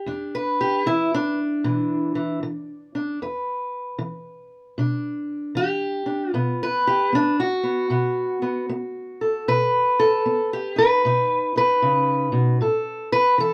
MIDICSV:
0, 0, Header, 1, 2, 480
1, 0, Start_track
1, 0, Tempo, 783290
1, 46, Time_signature, 4, 2, 24, 8
1, 8295, End_track
2, 0, Start_track
2, 0, Title_t, "Steel-string acoustic guitar"
2, 0, Program_c, 0, 25
2, 0, Note_on_c, 0, 67, 89
2, 39, Note_on_c, 0, 40, 67
2, 45, Note_on_c, 0, 62, 46
2, 211, Note_off_c, 0, 67, 0
2, 213, Note_on_c, 0, 71, 84
2, 372, Note_on_c, 0, 67, 83
2, 488, Note_off_c, 0, 40, 0
2, 527, Note_on_c, 0, 52, 64
2, 529, Note_off_c, 0, 62, 0
2, 529, Note_off_c, 0, 67, 0
2, 531, Note_on_c, 0, 64, 92
2, 688, Note_off_c, 0, 64, 0
2, 701, Note_on_c, 0, 62, 93
2, 849, Note_off_c, 0, 71, 0
2, 972, Note_off_c, 0, 52, 0
2, 1007, Note_on_c, 0, 47, 62
2, 1008, Note_on_c, 0, 52, 48
2, 1312, Note_off_c, 0, 52, 0
2, 1319, Note_on_c, 0, 52, 47
2, 1452, Note_off_c, 0, 47, 0
2, 1480, Note_off_c, 0, 52, 0
2, 1488, Note_on_c, 0, 52, 60
2, 1800, Note_off_c, 0, 62, 0
2, 1808, Note_on_c, 0, 62, 45
2, 1931, Note_off_c, 0, 52, 0
2, 1951, Note_off_c, 0, 62, 0
2, 1973, Note_on_c, 0, 40, 66
2, 1976, Note_on_c, 0, 71, 45
2, 2414, Note_off_c, 0, 40, 0
2, 2442, Note_on_c, 0, 52, 66
2, 2888, Note_off_c, 0, 52, 0
2, 2928, Note_on_c, 0, 47, 62
2, 2934, Note_on_c, 0, 62, 46
2, 3371, Note_off_c, 0, 47, 0
2, 3401, Note_on_c, 0, 52, 64
2, 3411, Note_on_c, 0, 67, 102
2, 3706, Note_off_c, 0, 62, 0
2, 3713, Note_on_c, 0, 62, 46
2, 3847, Note_off_c, 0, 52, 0
2, 3863, Note_off_c, 0, 62, 0
2, 3865, Note_off_c, 0, 67, 0
2, 3865, Note_on_c, 0, 65, 102
2, 3884, Note_on_c, 0, 47, 66
2, 3888, Note_on_c, 0, 59, 44
2, 4047, Note_off_c, 0, 65, 0
2, 4060, Note_off_c, 0, 71, 0
2, 4062, Note_on_c, 0, 71, 89
2, 4212, Note_on_c, 0, 67, 86
2, 4328, Note_off_c, 0, 47, 0
2, 4364, Note_off_c, 0, 59, 0
2, 4367, Note_off_c, 0, 67, 0
2, 4367, Note_on_c, 0, 59, 63
2, 4382, Note_on_c, 0, 62, 82
2, 4530, Note_off_c, 0, 71, 0
2, 4532, Note_off_c, 0, 62, 0
2, 4533, Note_on_c, 0, 66, 89
2, 4671, Note_off_c, 0, 59, 0
2, 4678, Note_on_c, 0, 59, 43
2, 4840, Note_on_c, 0, 47, 66
2, 4844, Note_off_c, 0, 59, 0
2, 4847, Note_on_c, 0, 59, 49
2, 5152, Note_off_c, 0, 59, 0
2, 5160, Note_on_c, 0, 59, 46
2, 5286, Note_off_c, 0, 47, 0
2, 5320, Note_off_c, 0, 59, 0
2, 5328, Note_on_c, 0, 59, 59
2, 5645, Note_on_c, 0, 69, 47
2, 5770, Note_off_c, 0, 59, 0
2, 5807, Note_off_c, 0, 66, 0
2, 5809, Note_on_c, 0, 47, 65
2, 5811, Note_on_c, 0, 71, 93
2, 5828, Note_off_c, 0, 69, 0
2, 6125, Note_on_c, 0, 69, 90
2, 6251, Note_off_c, 0, 47, 0
2, 6285, Note_on_c, 0, 59, 58
2, 6444, Note_off_c, 0, 69, 0
2, 6454, Note_on_c, 0, 67, 80
2, 6593, Note_on_c, 0, 63, 46
2, 6601, Note_off_c, 0, 71, 0
2, 6608, Note_off_c, 0, 67, 0
2, 6608, Note_on_c, 0, 71, 100
2, 6729, Note_off_c, 0, 59, 0
2, 6764, Note_off_c, 0, 63, 0
2, 6771, Note_on_c, 0, 47, 68
2, 6777, Note_on_c, 0, 63, 52
2, 7076, Note_off_c, 0, 63, 0
2, 7083, Note_on_c, 0, 63, 46
2, 7086, Note_off_c, 0, 71, 0
2, 7093, Note_on_c, 0, 71, 95
2, 7212, Note_off_c, 0, 47, 0
2, 7245, Note_on_c, 0, 49, 61
2, 7547, Note_off_c, 0, 49, 0
2, 7550, Note_on_c, 0, 47, 63
2, 7709, Note_off_c, 0, 63, 0
2, 7723, Note_off_c, 0, 47, 0
2, 7725, Note_on_c, 0, 45, 69
2, 7728, Note_off_c, 0, 71, 0
2, 7732, Note_on_c, 0, 69, 45
2, 8040, Note_off_c, 0, 69, 0
2, 8042, Note_on_c, 0, 71, 105
2, 8170, Note_off_c, 0, 45, 0
2, 8199, Note_on_c, 0, 52, 62
2, 8203, Note_off_c, 0, 71, 0
2, 8213, Note_on_c, 0, 69, 87
2, 8295, Note_off_c, 0, 52, 0
2, 8295, Note_off_c, 0, 69, 0
2, 8295, End_track
0, 0, End_of_file